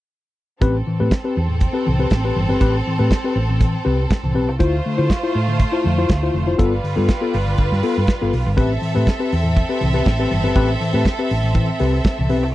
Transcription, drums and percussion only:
0.62 kick loud
0.62 closed hi-hat medium
1.11 kick medium
1.11 snare loud
1.11 closed hi-hat medium
1.60 kick loud
1.60 closed hi-hat medium
2.10 kick medium
2.10 snare loud
2.10 closed hi-hat medium
2.61 kick loud
2.61 closed hi-hat medium
3.11 kick medium
3.11 snare loud
3.11 closed hi-hat medium
3.60 kick loud
3.60 closed hi-hat medium
4.10 kick loud
4.10 snare loud
4.10 closed hi-hat medium
4.60 kick loud
4.60 closed hi-hat medium
5.10 kick medium
5.10 snare loud
5.10 closed hi-hat medium
5.59 kick loud
5.59 closed hi-hat medium
6.09 kick loud
6.09 snare loud
6.09 closed hi-hat medium
6.59 kick loud
6.59 closed hi-hat medium
6.85 open hi-hat medium
7.09 kick loud
7.09 snare loud
7.09 closed hi-hat medium
7.34 open hi-hat medium
7.58 kick loud
7.58 closed hi-hat medium
7.73 snare soft
7.83 open hi-hat medium
8.07 kick loud
8.07 snare loud
8.07 closed hi-hat medium
8.33 open hi-hat medium
8.57 kick loud
8.57 closed hi-hat medium
8.83 open hi-hat medium
9.07 kick loud
9.07 snare loud
9.07 closed hi-hat medium
9.32 open hi-hat medium
9.57 kick loud
9.57 closed hi-hat medium
9.81 open hi-hat medium
10.06 kick loud
10.06 snare loud
10.06 closed hi-hat medium
10.31 open hi-hat medium
10.56 kick loud
10.56 closed hi-hat medium
10.81 open hi-hat medium
11.05 kick medium
11.05 snare loud
11.05 closed hi-hat medium
11.30 open hi-hat medium
11.54 kick loud
11.54 closed hi-hat medium
11.79 open hi-hat medium
12.04 kick loud
12.04 snare loud
12.04 closed hi-hat medium
12.30 open hi-hat medium

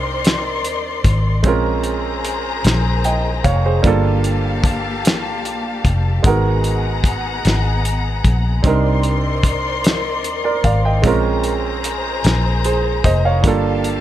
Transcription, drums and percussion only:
0.25 snare loud
0.25 closed hi-hat medium
0.64 closed hi-hat medium
1.04 kick medium
1.04 closed hi-hat medium
1.44 kick loud
1.44 closed hi-hat medium
1.83 closed hi-hat medium
2.25 closed hi-hat medium
2.64 snare loud
2.64 closed hi-hat medium
3.04 closed hi-hat soft
3.44 kick medium
3.44 closed hi-hat medium
3.84 kick loud
3.84 closed hi-hat medium
4.24 closed hi-hat soft
4.64 kick loud
4.64 closed hi-hat medium
5.05 snare loud
5.05 closed hi-hat medium
5.45 closed hi-hat medium
5.85 kick medium
5.85 closed hi-hat medium
6.24 kick loud
6.24 closed hi-hat medium
6.64 closed hi-hat soft
7.04 kick loud
7.04 closed hi-hat medium
7.45 snare loud
7.45 closed hi-hat medium
7.85 closed hi-hat medium
8.24 kick medium
8.24 closed hi-hat medium
8.64 kick loud
8.64 closed hi-hat medium
9.03 closed hi-hat soft
9.43 kick loud
9.43 closed hi-hat medium
9.84 snare loud
9.84 closed hi-hat medium
10.24 closed hi-hat medium
10.64 kick medium
10.64 closed hi-hat medium
11.04 kick loud
11.04 closed hi-hat medium
11.44 closed hi-hat medium
11.84 closed hi-hat medium
12.24 snare loud
12.24 closed hi-hat medium
12.64 closed hi-hat medium
13.04 kick medium
13.04 closed hi-hat medium
13.44 kick loud
13.44 closed hi-hat medium
13.84 closed hi-hat soft

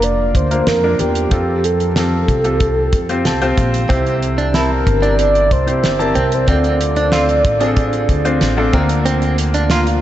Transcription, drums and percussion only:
0.02 closed hi-hat medium
0.35 kick medium
0.35 closed hi-hat medium
0.51 closed hi-hat medium
0.67 snare medium
0.67 closed hi-hat medium
0.99 closed hi-hat medium
1.15 closed hi-hat medium
1.31 kick loud
1.31 closed hi-hat medium
1.64 closed hi-hat medium
1.80 closed hi-hat soft
1.96 snare loud
1.96 closed hi-hat medium
2.28 kick medium
2.28 closed hi-hat medium
2.44 closed hi-hat soft
2.60 kick medium
2.60 closed hi-hat medium
2.93 kick medium
2.93 closed hi-hat medium
3.09 closed hi-hat soft
3.25 snare medium
3.25 closed hi-hat medium
3.42 closed hi-hat soft
3.58 kick medium
3.58 closed hi-hat medium
3.74 closed hi-hat medium
3.90 kick loud
3.90 closed hi-hat medium
4.06 closed hi-hat soft
4.22 closed hi-hat medium
4.38 closed hi-hat soft
4.54 snare loud
4.54 closed hi-hat medium
4.87 kick medium
4.87 closed hi-hat medium
5.03 closed hi-hat soft
5.19 closed hi-hat medium
5.35 closed hi-hat soft
5.51 kick medium
5.51 closed hi-hat medium
5.68 closed hi-hat soft
5.84 snare medium
5.84 closed hi-hat medium
6.00 closed hi-hat soft
6.15 closed hi-hat medium
6.32 closed hi-hat medium
6.48 kick medium
6.48 closed hi-hat medium
6.64 closed hi-hat soft
6.81 closed hi-hat medium
6.96 closed hi-hat soft
7.12 snare loud
7.12 closed hi-hat medium
7.29 closed hi-hat soft
7.45 kick loud
7.45 closed hi-hat medium
7.61 closed hi-hat soft
7.76 kick medium
7.76 closed hi-hat medium
7.93 closed hi-hat soft
8.09 kick medium
8.09 closed hi-hat medium
8.25 closed hi-hat soft
8.41 snare medium
8.41 closed hi-hat medium
8.73 kick loud
8.73 closed hi-hat medium
8.89 closed hi-hat medium
9.06 closed hi-hat medium
9.22 closed hi-hat soft
9.38 closed hi-hat medium
9.54 closed hi-hat soft
9.70 snare loud
9.70 closed hi-hat medium
9.87 closed hi-hat soft

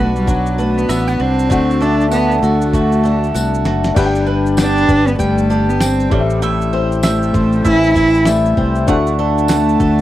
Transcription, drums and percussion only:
0.16 shaker soft
0.28 kick medium
0.28 shaker medium
0.46 shaker soft
0.59 shaker soft
0.78 shaker soft
0.89 cross-stick loud
0.89 tambourine medium
0.89 shaker medium
1.09 shaker soft
1.39 shaker soft
1.51 kick loud
1.51 shaker medium
1.71 shaker medium
1.82 shaker medium
2.01 shaker soft
2.11 tambourine medium
2.11 shaker medium
2.31 shaker soft
2.43 shaker soft
2.61 shaker soft
2.73 kick medium
2.73 shaker medium
2.92 shaker soft
3.05 shaker soft
3.24 shaker medium
3.35 tambourine medium
3.35 shaker medium
3.54 shaker soft
3.65 snare medium
3.65 shaker medium
3.84 snare medium
3.84 shaker soft
3.97 kick loud
3.97 crash medium
3.97 shaker medium
4.15 shaker medium
4.46 shaker medium
4.57 snare loud
4.57 tambourine medium
4.57 shaker medium
4.77 shaker soft
4.89 kick medium
4.89 shaker soft
5.08 shaker soft
5.19 kick medium
5.19 shaker medium
5.38 shaker medium
5.51 shaker soft
5.70 shaker medium
5.80 snare loud
5.80 tambourine medium
5.80 shaker medium
6.00 shaker soft
6.11 kick loud
6.30 shaker soft
6.42 shaker medium
6.61 shaker medium
6.92 shaker medium
7.03 snare loud
7.03 tambourine medium
7.03 shaker medium
7.23 shaker soft
7.34 kick medium
7.34 shaker soft
7.52 shaker soft
7.65 kick medium
7.65 shaker medium
7.83 shaker soft
7.96 kick medium
7.96 shaker medium
8.15 shaker medium
8.25 snare loud
8.25 tambourine medium
8.25 shaker medium
8.45 shaker soft
8.57 kick medium
8.75 shaker medium
8.88 kick loud
8.88 shaker medium
9.07 shaker medium
9.38 shaker medium
9.48 snare loud
9.48 tambourine medium
9.48 shaker medium
9.69 shaker soft
9.80 kick medium
9.80 shaker soft

